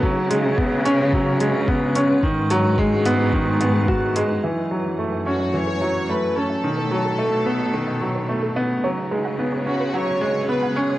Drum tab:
HH |-x-x-x-x|-x-x-x-x|--------|--------|
BD |o-o-o-o-|o-o-o-o-|--------|--------|

HH |--------|
BD |--------|